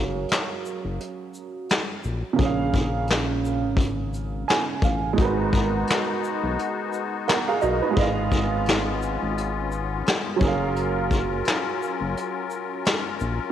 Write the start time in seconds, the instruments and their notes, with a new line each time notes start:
Already playing: analog synth bass F#1, upright piano F#3 C#4 G#4 A#4 F5
0.29 snare, closed hi-hat
0.33 clap
0.65 shaker
0.85 analog synth bass F#1
1.01 closed hi-hat
1.34 shaker
1.69 snare, clap, closed hi-hat
2.03 analog synth bass A#1, shaker
2.33 upright piano C#3 A#3
2.39 analog synth bass A#1, upright piano G#4 C#5, kick, closed hi-hat
2.45 upright piano F5
2.74 kick, shaker
3.07 snare, closed hi-hat
3.12 clap
3.45 shaker
3.65 analog synth bass G#1
3.77 kick, closed hi-hat
4.14 closed hi-hat, shaker
4.48 upright piano G#5, snare, clap, closed hi-hat
4.82 analog synth bass A1, upright piano F5, kick, shaker
5.13 upright piano G#3 D#4
5.17 analog synth bass G#1, accordion G#3 B3 D#4 F#4, upright piano F#4, kick, closed hi-hat
5.22 upright piano A#4 B4
5.53 kick, shaker
5.87 snare, closed hi-hat
5.91 clap
6.24 shaker
6.43 analog synth bass B1
6.59 closed hi-hat
6.93 shaker
7.28 upright piano A#4 F#5, snare, clap, closed hi-hat
7.48 upright piano G#4 F5
7.62 analog synth bass B1, upright piano F#4 D#5, shaker
7.82 upright piano D#4 B4
7.91 upright piano G#3 G#4
7.96 analog synth bass G#1, accordion B3 C#4 F4, upright piano B4 D#5, kick, closed hi-hat
8.02 upright piano F5
8.32 kick, shaker
8.66 snare, closed hi-hat
8.70 clap
9.02 shaker
9.23 analog synth bass G#1
9.38 closed hi-hat
9.72 shaker
10.06 snare, clap, closed hi-hat
10.36 upright piano F#3 C#4, accordion F#3
10.41 analog synth bass F#1, upright piano G#4 A#4, accordion A#4, kick, shaker
10.48 upright piano F5
10.76 closed hi-hat
11.11 kick, shaker
11.45 snare, closed hi-hat
11.49 clap
11.82 shaker
12.01 analog synth bass F#1
12.17 closed hi-hat
12.50 shaker
12.85 snare, clap, closed hi-hat
13.20 analog synth bass A#1, shaker